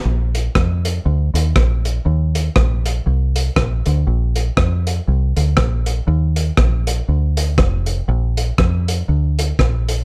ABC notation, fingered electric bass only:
X:1
M:4/4
L:1/8
Q:"Swing" 1/4=120
K:Bb
V:1 name="Fingered electric bass" clef=bass
B,,,2 F,,2 D,, E,, B,,,2 | E,,2 B,,,2 C,,2 B,,, D,, | B,,,2 F,,2 C,, D,, B,,,2 | E,,2 B,,,2 D,,2 F,,,2 |
B,,,2 F,,2 D,,2 B,,,2 |]